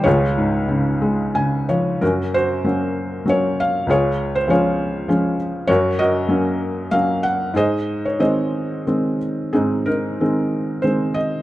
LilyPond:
<<
  \new Staff \with { instrumentName = "Felt piano" } { \time 3/4 \key des \major \tempo 4 = 96 << { des''2~ des''8 r8 | \key ges \lydian bes'8 c''4. des''8 f''8 | des''8. c''16 des''4. r8 | des''8 ees''4. f''8 ges''8 |
ees''8. des''16 ees''4. r8 | aes'8 bes'4. c''8 ees''8 | } \\ { <f' aes'>2~ <f' aes'>8 r8 | <des' ges'>8 ges'4. r4 | <f' aes'>4 <f' aes'>4. r8 | <ges' bes'>8 <ges' bes'>4. r4 |
<aes' c''>4 <aes' c''>4. r8 | <c' ees'>8 ees'4. r4 | } >> }
  \new Staff \with { instrumentName = "Felt piano" } { \clef bass \time 3/4 \key des \major des,8 aes,8 des8 aes8 <des aes''>8 <f des''>8 | \key ges \lydian ges,4 <ges bes des'>4 <ges bes des'>4 | des,4 <f aes des'>4 <f aes des'>4 | ges,4 <ges bes des'>4 <ges bes des'>4 |
aes,4 <ees aes c'>4 <ees aes c'>4 | aes,4 <ees aes c'>4 <ees aes c'>4 | }
>>